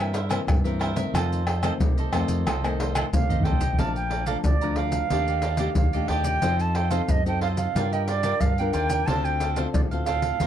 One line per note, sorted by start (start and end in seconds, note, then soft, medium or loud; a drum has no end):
0.00 0.38 G2 medium
0.00 0.45 G2 medium
0.00 0.13 E3 medium
0.00 0.13 A#3 medium
0.00 0.13 C4 medium
0.00 0.13 A#4 soft
0.00 0.13 C5 soft
0.00 0.14 E5 medium
0.13 0.28 E4 soft
0.13 0.29 A#4 soft
0.13 0.29 C5 medium
0.13 0.29 E5 medium
0.13 pandeiro medium
0.13 maracas medium
0.29 0.58 E3 medium
0.29 0.59 A#3 medium
0.29 0.59 C4 medium
0.29 0.40 E4 medium
0.29 0.40 A#4 medium
0.29 0.40 C5 medium
0.29 0.40 E5 medium
0.29 pandeiro medium
0.29 tamborim medium
0.29 maracas medium
0.47 1.11 G2 soft
0.47 1.04 G2 medium
0.47 pandeiro medium
0.47 tamborim medium
0.47 maracas medium
0.47 surdo loud
0.64 0.92 E3 medium
0.64 0.93 A#3 medium
0.64 0.93 C4 medium
0.64 0.79 A#4 soft
0.64 0.79 C5 soft
0.64 0.80 E5 soft
0.64 pandeiro soft
0.64 maracas soft
0.79 0.96 E4 medium
0.79 0.96 A#4 medium
0.79 0.96 C5 medium
0.79 0.95 E5 medium
0.79 pandeiro medium
0.79 tamborim medium
0.96 1.41 D#3 medium
0.96 1.41 A3 soft
0.96 1.42 C4 medium
0.96 1.13 A#4 soft
0.96 1.13 C5 soft
0.96 1.12 E5 medium
0.96 pandeiro medium
0.96 maracas medium
1.14 1.70 F2 medium
1.14 1.77 F2 medium
1.14 1.45 F4 medium
1.14 1.46 A4 medium
1.14 1.47 C5 medium
1.14 1.47 D#5 medium
1.14 pandeiro medium
1.14 tamborim medium
1.14 maracas medium
1.14 surdo medium
1.33 pandeiro soft
1.33 maracas soft
1.46 1.62 F4 soft
1.46 1.62 A4 medium
1.46 1.62 C5 medium
1.46 1.63 D#5 medium
1.46 pandeiro medium
1.46 tamborim medium
1.62 2.07 D#3 medium
1.62 2.08 A3 medium
1.62 2.08 C4 medium
1.62 1.73 F4 medium
1.62 1.73 A4 medium
1.62 1.73 C5 medium
1.62 1.73 D#5 medium
1.62 pandeiro medium
1.62 tamborim medium
1.62 maracas medium
1.80 2.08 C2 medium
1.80 2.43 C3 medium
1.80 pandeiro medium
1.80 maracas medium
1.80 surdo medium
1.97 2.12 A4 soft
1.97 2.12 C5 soft
1.97 2.12 D#5 soft
1.97 pandeiro soft
1.97 maracas soft
2.12 2.27 F2 medium
2.12 2.44 D#3 medium
2.12 2.44 A3 medium
2.12 2.45 C4 medium
2.12 2.45 F4 medium
2.12 2.45 A4 medium
2.12 2.45 C5 medium
2.12 2.46 D#5 medium
2.12 pandeiro medium
2.12 tamborim medium
2.12 maracas medium
2.28 2.43 F2 medium
2.28 pandeiro medium
2.28 maracas medium
2.46 3.03 C2 medium
2.46 3.09 F2 medium
2.46 2.62 F4 medium
2.46 2.62 A4 medium
2.46 2.62 C5 medium
2.46 2.62 D#5 medium
2.46 pandeiro medium
2.46 tamborim medium
2.46 maracas medium
2.46 surdo medium
2.63 3.08 D#3 medium
2.63 3.08 A3 medium
2.63 3.08 C4 medium
2.63 2.79 A4 soft
2.63 2.79 C5 soft
2.63 2.79 D#5 soft
2.63 pandeiro soft
2.63 tamborim medium
2.63 maracas soft
2.79 2.94 F4 soft
2.79 2.94 A4 medium
2.79 2.94 C5 medium
2.79 2.95 D#5 medium
2.79 pandeiro medium
2.95 3.05 F4 medium
2.95 3.05 A4 medium
2.95 3.05 C5 medium
2.95 3.05 D#5 medium
2.95 pandeiro medium
2.95 tamborim medium
2.95 maracas medium
3.13 3.69 C2 medium
3.13 3.76 C3 medium
3.13 3.56 D#3 medium
3.13 3.56 A3 medium
3.13 3.56 C4 medium
3.13 3.46 F5 medium
3.13 pandeiro medium
3.13 maracas medium
3.13 surdo loud
3.30 3.44 A4 soft
3.30 3.45 C5 soft
3.30 3.45 D#5 medium
3.30 surdo medium
3.30 pandeiro soft
3.30 maracas soft
3.41 3.81 G5 medium
3.41 surdo medium
3.45 3.61 F4 medium
3.45 3.61 A4 medium
3.45 3.60 C5 medium
3.45 3.59 D#5 medium
3.45 pandeiro medium
3.52 surdo medium
3.60 3.78 A4 soft
3.60 3.77 C5 soft
3.60 3.77 D#5 medium
3.60 pandeiro medium
3.60 maracas medium
3.60 surdo medium
3.73 surdo medium
3.79 4.35 A#1 medium
3.79 4.42 A#2 soft
3.79 4.24 F3 soft
3.79 4.24 A3 soft
3.79 4.24 D4 soft
3.79 4.10 D5 medium
3.79 4.10 F5 medium
3.79 3.95 A5 medium
3.79 4.11 A#5 medium
3.79 pandeiro medium
3.79 maracas medium
3.79 surdo medium
3.96 4.28 G5 medium
3.96 pandeiro soft
3.96 maracas soft
4.10 4.26 A4 soft
4.10 4.26 D5 soft
4.10 4.26 F5 soft
4.10 4.26 A#5 soft
4.10 pandeiro medium
4.26 4.56 F3 medium
4.26 4.56 A3 medium
4.26 4.56 D4 medium
4.26 4.37 A4 medium
4.26 4.37 D5 medium
4.26 4.44 F5 medium
4.26 4.37 F5 medium
4.26 4.37 A#5 medium
4.26 pandeiro medium
4.26 maracas medium
4.44 5.01 D2 medium
4.44 5.08 F2 medium
4.44 4.78 D5 medium
4.44 pandeiro medium
4.44 maracas medium
4.44 surdo medium
4.61 5.06 F3 medium
4.61 5.06 A3 medium
4.61 5.07 D4 medium
4.61 4.76 D5 soft
4.61 4.77 F5 soft
4.61 4.77 A#5 soft
4.61 pandeiro soft
4.61 maracas soft
4.76 5.09 D5 medium
4.76 5.77 F5 medium
4.76 5.10 F5 medium
4.76 5.10 A#5 medium
4.76 pandeiro medium
4.92 pandeiro medium
4.92 maracas medium
5.10 5.68 D#2 medium
5.10 5.74 D#3 medium
5.10 5.42 A3 medium
5.10 5.26 D4 medium
5.10 5.42 D4 medium
5.10 5.26 G4 medium
5.10 5.43 G4 medium
5.10 5.27 D5 medium
5.10 5.27 D#5 medium
5.10 pandeiro medium
5.10 maracas medium
5.10 surdo soft
5.28 5.42 G4 soft
5.28 5.43 D5 soft
5.28 5.43 D#5 soft
5.28 pandeiro soft
5.28 maracas soft
5.42 5.57 D4 soft
5.42 5.58 G4 soft
5.42 5.59 D5 soft
5.42 5.58 D#5 soft
5.42 pandeiro medium
5.42 maracas medium
5.57 5.88 A3 medium
5.57 5.69 D4 medium
5.57 5.88 D4 medium
5.57 5.69 G4 medium
5.57 5.88 G4 medium
5.57 5.69 D5 medium
5.57 5.69 D#5 medium
5.57 pandeiro medium
5.57 maracas medium
5.75 6.05 D#2 medium
5.75 6.40 A#2 soft
5.75 6.10 F5 medium
5.75 pandeiro medium
5.75 maracas medium
5.75 surdo medium
5.93 6.38 A3 medium
5.93 6.39 D4 medium
5.93 6.39 G4 medium
5.93 6.09 G4 soft
5.93 6.09 D5 soft
5.93 6.09 D#5 soft
5.93 pandeiro soft
5.93 maracas soft
6.08 6.38 D#2 medium
6.08 6.25 D4 medium
6.08 6.25 G4 medium
6.08 6.24 D5 medium
6.08 6.24 D#5 medium
6.08 6.63 G5 medium
6.08 pandeiro medium
6.24 6.42 G4 soft
6.24 6.41 D5 soft
6.24 6.41 D#5 soft
6.24 pandeiro medium
6.24 maracas medium
6.42 7.00 F2 medium
6.42 7.06 F3 medium
6.42 6.87 C4 medium
6.42 6.87 D#4 soft
6.42 6.74 F4 medium
6.42 6.74 A4 medium
6.42 6.88 A4 medium
6.42 6.75 C5 medium
6.42 6.76 D#5 medium
6.42 pandeiro medium
6.42 maracas medium
6.42 surdo soft
6.60 6.77 A5 medium
6.60 pandeiro soft
6.60 maracas soft
6.75 6.90 F4 soft
6.75 6.90 A4 soft
6.75 6.90 C5 soft
6.75 6.91 D#5 medium
6.75 6.93 G5 medium
6.75 pandeiro medium
6.91 7.20 C4 medium
6.91 7.20 D#4 medium
6.91 7.01 F4 medium
6.91 7.01 A4 medium
6.91 7.20 A4 medium
6.91 7.01 C5 medium
6.91 7.02 D#5 medium
6.91 7.12 F5 medium
6.91 pandeiro medium
6.91 maracas medium
7.08 7.66 F#2 medium
7.08 7.72 C3 medium
7.08 7.27 D#5 medium
7.08 pandeiro medium
7.08 maracas medium
7.08 surdo medium
7.25 7.70 C4 medium
7.25 7.70 D#4 medium
7.25 7.71 A4 medium
7.25 7.41 A4 soft
7.25 7.42 C5 soft
7.25 7.41 D#5 soft
7.25 7.41 G5 medium
7.25 pandeiro soft
7.25 maracas soft
7.41 7.74 F4 medium
7.41 7.74 A4 medium
7.41 7.75 C5 medium
7.41 7.75 D#5 medium
7.41 7.48 F5 medium
7.41 pandeiro medium
7.57 7.94 F5 medium
7.57 pandeiro medium
7.57 maracas medium
7.75 8.32 G2 medium
7.75 8.39 G3 soft
7.75 8.07 D4 soft
7.75 7.91 F4 medium
7.75 8.07 F4 medium
7.75 7.91 A#4 medium
7.75 8.07 A#4 medium
7.75 7.92 D5 medium
7.75 7.91 G5 medium
7.75 pandeiro medium
7.75 maracas medium
7.75 surdo soft
7.93 8.08 A#4 soft
7.93 8.08 D5 soft
7.93 8.06 D#5 medium
7.93 8.08 G5 soft
7.93 pandeiro soft
7.93 maracas soft
8.07 8.22 F4 soft
8.07 8.23 A#4 soft
8.07 8.42 D5 medium
8.07 8.23 D5 medium
8.07 8.24 G5 medium
8.07 pandeiro medium
8.07 maracas medium
8.23 8.52 D4 medium
8.23 8.34 F4 medium
8.23 8.53 F4 medium
8.23 8.34 A#4 medium
8.23 8.53 A#4 medium
8.23 8.34 D5 medium
8.23 8.34 G5 medium
8.23 pandeiro medium
8.23 maracas medium
8.41 8.70 G2 medium
8.41 9.05 D3 soft
8.41 8.75 F5 medium
8.41 pandeiro medium
8.41 maracas medium
8.41 surdo medium
8.58 9.04 D4 medium
8.58 9.04 F4 medium
8.58 8.73 A#4 soft
8.58 9.04 A#4 medium
8.58 8.74 D5 soft
8.58 8.74 G5 soft
8.58 pandeiro soft
8.58 maracas soft
8.73 9.03 D#2 medium
8.73 8.90 F4 medium
8.73 8.90 A#4 medium
8.73 8.89 D5 medium
8.73 9.08 G5 medium
8.73 8.88 G5 medium
8.73 pandeiro medium
8.73 maracas medium
8.89 9.07 A#4 soft
8.89 9.06 D5 soft
8.89 9.06 G5 medium
8.89 pandeiro medium
8.89 maracas medium
9.06 9.65 D2 medium
9.06 9.72 D3 medium
9.06 9.53 C4 soft
9.06 9.40 D4 medium
9.06 9.53 F4 soft
9.06 9.40 A4 medium
9.06 9.53 A4 medium
9.06 9.41 C5 medium
9.06 9.41 F5 medium
9.06 9.26 A5 medium
9.06 pandeiro medium
9.06 maracas medium
9.06 surdo medium
9.25 9.58 G5 medium
9.25 pandeiro soft
9.25 maracas soft
9.40 9.55 D4 soft
9.40 9.56 A4 medium
9.40 9.56 C5 soft
9.40 9.57 F5 medium
9.40 pandeiro medium
9.40 maracas medium
9.56 9.85 C4 medium
9.56 9.66 D4 medium
9.56 9.86 F4 medium
9.56 9.66 A4 medium
9.56 9.86 A4 medium
9.56 9.67 C5 medium
9.56 9.67 F5 medium
9.56 pandeiro medium
9.56 maracas medium
9.73 10.31 D2 medium
9.73 10.38 A2 medium
9.73 9.81 D5 medium
9.73 pandeiro medium
9.73 maracas medium
9.73 surdo loud
9.91 10.36 C4 medium
9.91 10.37 F4 medium
9.91 10.06 A4 soft
9.91 10.37 A4 medium
9.91 10.07 C5 soft
9.91 10.06 F5 soft
9.91 pandeiro soft
9.91 maracas soft
10.05 10.39 D4 medium
10.05 10.39 A4 medium
10.05 10.40 C5 medium
10.05 10.47 F5 medium
10.05 10.40 F5 medium
10.05 pandeiro medium
10.05 maracas medium
10.22 pandeiro medium
10.22 maracas medium
10.40 10.47 D#2 medium
10.40 10.47 D#3 soft
10.40 10.47 A#3 medium
10.40 10.47 C4 medium
10.40 10.47 D#4 medium
10.40 10.47 F4 medium
10.40 10.47 A#4 medium
10.40 10.47 C5 medium
10.40 10.47 D#5 medium
10.40 pandeiro medium
10.40 maracas medium
10.40 surdo soft